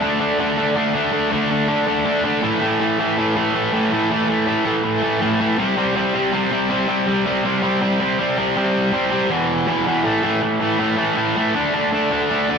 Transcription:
0.02 D3 A3 D4
0.20 D3 A3 D4
0.39 D3 A3 D4
0.57 D3 A3 D4
0.75 D3 A3 D4
0.94 D3 A3 D4
1.12 D3 A3 D4
1.31 D3 A3 D4
1.50 D3 A3 D4
1.68 D3 A3 D4
1.87 D3 A3 D4
2.05 D3 A3 D4
2.24 D3 A3 D4
2.43 A2 E3 A3
2.61 A2 E3 A3
2.81 A2 E3 A3
2.99 A2 E3 A3
3.17 A2 E3 A3
3.37 A2 E3 A3
3.55 A2 E3 A3
3.73 A2 E3 A3
3.92 A2 E3 A3
4.10 A2 E3 A3
4.29 A2 E3 A3
4.46 A2 E3 A3
4.65 A2 E3 A3
4.83 A2 E3 A3
5.02 A2 E3 A3
5.20 A2 E3 A3
5.40 A2 E3 A3
5.58 C3 G3 C4
5.77 C3 G3 C4
5.95 C3 G3 C4
6.13 C3 G3 C4
6.32 C3 G3 C4
6.51 C3 G3 C4
6.70 C3 G3 C4
6.88 C3 G3 C4
7.07 C3 G3 C4
7.26 C3 G3 C4
7.44 C3 G3 C4
7.62 C3 G3 C4
7.81 C3 G3 C4
8.00 C3 G3 C4
8.18 C3 G3 C4
8.37 C3 G3 C4
8.56 C3 G3 C4
8.93 C3 G3 C4
9.12 C3 G3 C4
9.30 E2 B2 E3
9.67 E2 B2 E3
9.87 E2 B2 E3
10.04 A2 E3 A3
10.23 A2 E3 A3
10.42 A2 E3 A3
10.60 A2 E3 A3
10.79 A2 E3 A3
10.97 A2 E3 A3
11.16 A2 E3 A3
11.36 A2 E3 A3
11.55 D3 A3 D4
11.74 D3 A3 D4
11.92 D3 A3 D4
12.11 D3 A3 D4
12.30 D3 A3 D4
12.49 D3 A3 D4

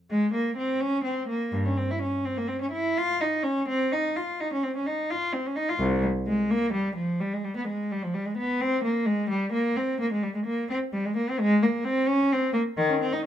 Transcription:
0.10 G#3
0.33 A#3
0.56 C4
0.80 C#4
1.04 C4
1.28 A#3
1.52 G2
1.65 C#4
1.77 C4
1.90 E4
2.02 C#4
2.25 C4
2.37 A#3
2.48 C4
2.61 C#4
2.72 E4
2.98 F4
3.21 D#4
3.43 C#4
3.68 C4
3.92 D#4
4.16 F4
4.40 D#4
4.53 C#4
4.63 C4
4.76 C#4
4.86 D#4
5.10 F4
5.33 C4
5.46 C#4
5.56 D#4
5.69 F4
5.79 C2
6.03 G3
6.27 G#3
6.50 A#3
6.73 G3
6.96 F3
7.20 G3
7.33 G#3
7.44 G3
7.57 B3
7.68 G#3
7.91 G3
8.03 F3
8.14 G3
8.26 G#3
8.37 B3
8.61 C4
8.84 A#3
9.06 G#3
9.30 G3
9.53 A#3
9.76 C4
10.00 A#3
10.12 G#3
10.23 G3
10.34 G#3
10.46 A#3
10.69 C4
10.93 G3
11.05 G#3
11.16 A#3
11.29 C4
11.39 G#3
11.62 A#3
11.85 C4
12.08 C#4
12.32 C4
12.53 A#3
12.77 D#3
12.89 C#4
13.00 C4
13.13 D#4

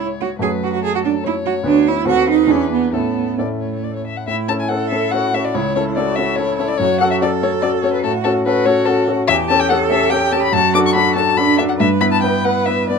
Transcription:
Already playing: C#2 G#3 E4 C#5
0.21 F#4
0.39 F#2 A3 F#4 G#4 B4 C#5
0.63 F#4
0.73 F#4
0.82 G#4 A4
0.95 F#4
1.05 D4
1.24 E4 C#5
1.45 F#4
1.63 D2 B3 D4 F#4 B4
1.87 E4
2.05 D#2 C4 F#4 A4 B4
2.30 D#4
2.47 E2 C#4 D4 E4 G#4
2.72 B3
2.92 A2 B3 C#4 E4 A4
3.38 A2 A3 C#4 E4 A4 D5
3.61 C#5
3.74 C#5
3.84 D5
3.96 C#5
4.07 E5
4.17 F#5
4.27 A2 E4 E5
4.48 C#4 E4 A4 A5
4.60 G#5
4.69 C#4 E4 A4 F#5
4.89 C#4 E4 A4 E5
5.11 C#4 E4 F#4 A4 F#5
5.34 C#4 E4 A4 E5
5.45 D5
5.55 C#2 E4 C#5
5.76 C#4 E4 A4 C#5
5.96 C#4 E4 F#4 A4 D5
6.16 C#4 E4 A4 E5
6.36 C#4 E4 A4 C#5
6.58 C#4 E4 A4 C#5
6.68 D5
6.78 F#2 F#4 C#5
7.00 C#4 F#4 A4 F#5
7.11 E5
7.22 C#4 F#4 A4 D5
7.43 C#4 F#4 A4 C#5
7.62 C#4 F#4 A4 D5
7.82 C#4 F#4 A4 C#5
7.93 B4
8.03 A2 F#4 A4
8.24 C#4 F#4 A4
8.46 C#4 F#4 A4 B4
8.65 C#4 F#4 A4 C#5
8.86 C#4 F#4 A4
9.08 C#4 F#4 A4
9.27 E2 G4 E5
9.49 C#4 G4 A4 A5
9.60 G5
9.70 C#4 G4 A4 F#5
9.90 C#4 G4 A4 E5
10.10 C#4 G4 A4 G5
10.32 C#4 G4 A4 A5
10.43 B5
10.52 F#2 F#4 A5
10.74 D4 F#4 A4 D6
10.86 C#6
10.94 D4 F#4 A4 B5
11.16 D4 F#4 A4 A5
11.37 D4 F#4 A4 B5
11.59 D4 F#4 A4 E5
11.69 F#5
11.79 G2 B4 E5
12.01 B3 E4 B4 B5
12.12 A5
12.22 B3 E4 B4 G5
12.44 B3 E4 B4 F#5
12.66 B3 E4 B4 E5
12.89 B3 E4 B4 D5

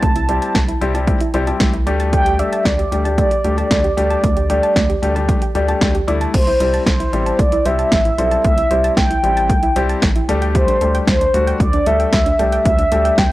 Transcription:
Already playing: A5
0.02 C2 A3, kick, closed hi-hat
0.16 E4, closed hi-hat
0.29 G3 C4 E4 G4 C5, closed hi-hat
0.42 A5, closed hi-hat
0.55 C2 A3, kick, snare, closed hi-hat
0.68 E4, closed hi-hat
0.81 C2 G3 C4 E4 G4, closed hi-hat
0.94 G3 C4 E4 G4 A5, closed hi-hat
1.07 A3, kick, closed hi-hat
1.21 E4, closed hi-hat
1.34 C2 G3 C4 E4 G4 C5, closed hi-hat
1.47 G3 C4 E4 G4 A5, closed hi-hat
1.60 C2 A3, kick, snare, closed hi-hat
1.74 E4, closed hi-hat
1.87 D2 G3 A3 D4 G4 D5, closed hi-hat
2.00 A5, closed hi-hat
2.13 A3 G5, kick, closed hi-hat
2.26 G4, closed hi-hat
2.39 G3 A3 D4 G4 D5 E5, closed hi-hat
2.52 A5, closed hi-hat
2.65 D2 A3 D5, kick, snare, closed hi-hat
2.79 G4, closed hi-hat
2.92 D2 G3 A3 D4 G4, closed hi-hat
3.05 G3 A3 D4 G4 A5, closed hi-hat
3.18 A3 D5, kick, closed hi-hat
3.31 G4, closed hi-hat
3.44 D2 G3 A3 D4 G4 D5, closed hi-hat
3.58 G3 A3 D4 G4 A5, closed hi-hat
3.71 D2 A3, kick, snare, closed hi-hat
3.84 G4, closed hi-hat
3.97 D2 G3 A3 D4 G4 D5, closed hi-hat
4.10 A5, closed hi-hat
4.23 D2 A3, kick, closed hi-hat
4.37 G4, closed hi-hat
4.50 G3 A3 D4 G4 D5, closed hi-hat
4.63 A5, closed hi-hat
4.76 D2 A3, kick, snare, closed hi-hat
4.89 G4, closed hi-hat
5.02 D2 G3 A3 D4 G4, closed hi-hat
5.16 G3 A3 D4 G4 A5, closed hi-hat
5.29 A3, kick, closed hi-hat
5.42 G4, closed hi-hat
5.55 D2 G3 A3 D4 G4 D5, closed hi-hat
5.68 G3 A3 D4 G4 A5, closed hi-hat
5.81 D2 A3, kick, snare, closed hi-hat
5.95 G4, closed hi-hat
6.08 D2 G3 A3 D4 E4 D5, closed hi-hat
6.21 A5, closed hi-hat
6.34 C2 A3 C5, kick, closed hi-hat, crash
6.47 E4, closed hi-hat
6.60 C2 G3 C4 E4 G4 C5, closed hi-hat
6.74 A5, closed hi-hat
6.86 C2 A3 C5, kick, snare, closed hi-hat
7.00 E4, closed hi-hat
7.13 A1 G3 C4 E4 G4, closed hi-hat
7.26 A5, closed hi-hat
7.39 C2 A3 D5, kick, closed hi-hat
7.52 E4, closed hi-hat
7.65 C2 G3 C4 E4 G4 C5 E5, closed hi-hat
7.79 A5, closed hi-hat
7.92 A1 A3, kick, snare, closed hi-hat
8.05 E4, closed hi-hat
8.18 B1 G3 C4 E4 A4 C5, closed hi-hat
8.31 A5, closed hi-hat
8.45 C2 A3 E5, kick, closed hi-hat
8.58 E4, closed hi-hat
8.71 C2 G3 C4 E4 G4 C5, closed hi-hat
8.84 A5, closed hi-hat
8.97 C2 A3 G5, kick, snare, closed hi-hat
9.10 E4, closed hi-hat
9.23 A1 G3 C4 E4 G4, closed hi-hat
9.37 A5, closed hi-hat
9.50 C2 A3, kick, closed hi-hat
9.63 E4, closed hi-hat
9.76 C2 G3 C4 E4 G4 C5, closed hi-hat
9.89 A5, closed hi-hat
10.02 A1 A3, kick, snare, closed hi-hat
10.16 E4, closed hi-hat
10.29 D2 G3 A3 D4 G4 A4, closed hi-hat
10.42 G5, closed hi-hat
10.55 G3 C5, kick, closed hi-hat
10.68 D4, closed hi-hat
10.81 D2 G3 A3 D4 G4 A4, closed hi-hat
10.95 G5, closed hi-hat
11.07 D2 G3 C5, kick, snare, closed hi-hat
11.21 D4, closed hi-hat
11.34 D2 G3 A3 D4 F#4, closed hi-hat
11.47 G5, closed hi-hat
11.60 D2 G3 D5, kick, closed hi-hat
11.73 D4, closed hi-hat
11.86 D2 G3 A3 D4 A4 E5, closed hi-hat
12.00 G5, closed hi-hat
12.13 D2 G3, kick, snare, closed hi-hat
12.26 D4, closed hi-hat
12.39 C2 G3 A3 D4 G4 A4, closed hi-hat
12.52 G5, closed hi-hat
12.66 D2 G3 E5, kick, closed hi-hat
12.79 D4, closed hi-hat
12.92 D2 G3 A3 D4 G4 A4, closed hi-hat
13.05 G5, closed hi-hat
13.18 D2 G3 G5, kick, snare, closed hi-hat

